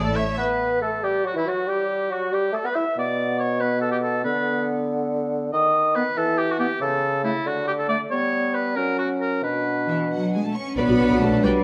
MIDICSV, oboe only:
0, 0, Header, 1, 2, 480
1, 0, Start_track
1, 0, Key_signature, 2, "minor"
1, 0, Tempo, 439560
1, 407, Time_signature, 6, 3, 24, 8
1, 1832, Tempo, 427655
1, 8552, Tempo, 442804
1, 12858, End_track
2, 0, Start_track
2, 0, Title_t, "Oboe"
2, 0, Program_c, 0, 68
2, 47, Note_on_c, 0, 69, 68
2, 172, Note_on_c, 0, 73, 69
2, 188, Note_off_c, 0, 69, 0
2, 406, Note_off_c, 0, 73, 0
2, 413, Note_on_c, 0, 71, 66
2, 879, Note_off_c, 0, 71, 0
2, 895, Note_on_c, 0, 69, 58
2, 1138, Note_on_c, 0, 67, 64
2, 1155, Note_off_c, 0, 69, 0
2, 1368, Note_off_c, 0, 67, 0
2, 1383, Note_on_c, 0, 66, 58
2, 1488, Note_off_c, 0, 66, 0
2, 1502, Note_on_c, 0, 64, 56
2, 1619, Note_on_c, 0, 66, 57
2, 1636, Note_off_c, 0, 64, 0
2, 1844, Note_on_c, 0, 67, 65
2, 1861, Note_off_c, 0, 66, 0
2, 2329, Note_on_c, 0, 66, 58
2, 2346, Note_off_c, 0, 67, 0
2, 2573, Note_on_c, 0, 67, 57
2, 2589, Note_off_c, 0, 66, 0
2, 2810, Note_on_c, 0, 69, 67
2, 2827, Note_off_c, 0, 67, 0
2, 2931, Note_on_c, 0, 71, 64
2, 2947, Note_off_c, 0, 69, 0
2, 3039, Note_on_c, 0, 76, 68
2, 3056, Note_off_c, 0, 71, 0
2, 3278, Note_off_c, 0, 76, 0
2, 3301, Note_on_c, 0, 74, 67
2, 3753, Note_off_c, 0, 74, 0
2, 3760, Note_on_c, 0, 73, 67
2, 3995, Note_on_c, 0, 71, 75
2, 4012, Note_off_c, 0, 73, 0
2, 4219, Note_off_c, 0, 71, 0
2, 4226, Note_on_c, 0, 69, 66
2, 4337, Note_off_c, 0, 69, 0
2, 4344, Note_on_c, 0, 67, 61
2, 4400, Note_off_c, 0, 67, 0
2, 4468, Note_on_c, 0, 69, 68
2, 4703, Note_off_c, 0, 69, 0
2, 4710, Note_on_c, 0, 71, 74
2, 5184, Note_off_c, 0, 71, 0
2, 6158, Note_on_c, 0, 75, 86
2, 6631, Note_on_c, 0, 71, 75
2, 6648, Note_off_c, 0, 75, 0
2, 6877, Note_on_c, 0, 69, 85
2, 6894, Note_off_c, 0, 71, 0
2, 7114, Note_on_c, 0, 67, 77
2, 7131, Note_off_c, 0, 69, 0
2, 7255, Note_on_c, 0, 66, 73
2, 7272, Note_off_c, 0, 67, 0
2, 7344, Note_off_c, 0, 66, 0
2, 7351, Note_on_c, 0, 67, 73
2, 7587, Note_off_c, 0, 67, 0
2, 7599, Note_on_c, 0, 69, 82
2, 8067, Note_off_c, 0, 69, 0
2, 8077, Note_on_c, 0, 64, 69
2, 8330, Note_on_c, 0, 66, 75
2, 8347, Note_off_c, 0, 64, 0
2, 8557, Note_off_c, 0, 66, 0
2, 8564, Note_on_c, 0, 67, 74
2, 8614, Note_off_c, 0, 67, 0
2, 8687, Note_on_c, 0, 69, 70
2, 8789, Note_off_c, 0, 69, 0
2, 8795, Note_on_c, 0, 74, 76
2, 8900, Note_off_c, 0, 74, 0
2, 9033, Note_on_c, 0, 73, 75
2, 9507, Note_on_c, 0, 71, 63
2, 9524, Note_off_c, 0, 73, 0
2, 9740, Note_on_c, 0, 70, 69
2, 9756, Note_off_c, 0, 71, 0
2, 9979, Note_off_c, 0, 70, 0
2, 9985, Note_on_c, 0, 66, 59
2, 10094, Note_off_c, 0, 66, 0
2, 10226, Note_on_c, 0, 70, 59
2, 10464, Note_off_c, 0, 70, 0
2, 10471, Note_on_c, 0, 71, 58
2, 11188, Note_off_c, 0, 71, 0
2, 11932, Note_on_c, 0, 71, 50
2, 12646, Note_on_c, 0, 74, 50
2, 12662, Note_off_c, 0, 71, 0
2, 12858, Note_off_c, 0, 74, 0
2, 12858, End_track
0, 0, End_of_file